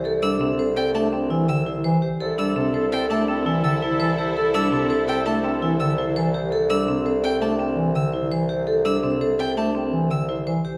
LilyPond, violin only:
\new Staff \with { instrumentName = "Violin" } { \time 6/4 \key c \major \tempo 4 = 167 r8 e'''8 r4 g''8 a''8 r4 e'''8 r4. | r8 e'''8 r4 g''8 a''8 r4 e'''8 r4. | r8 e'''8 r4 g''8 a''8 r4 e'''8 r4. | r8 e'''8 r4 g''8 a''8 r4 e'''8 r4. |
r8 e'''8 r4 g''8 a''8 r4 e'''8 r4. | }